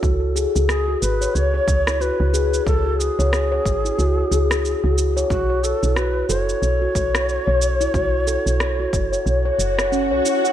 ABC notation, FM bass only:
X:1
M:4/4
L:1/16
Q:"Swing 16ths" 1/4=91
K:F#m
V:1 name="FM bass" clef=bass
C,,3 C,,3 G,,, z C,, z C,,3 C,,3 | C,,3 C,,3 G,,, z C,, z C,,3 C,,3 | B,,,3 B,,,3 F,,, z B,,, z B,,,3 B,,,3 | B,,,3 B,,,3 F,,, z B,,, z F,,,3 B,,, z2 |]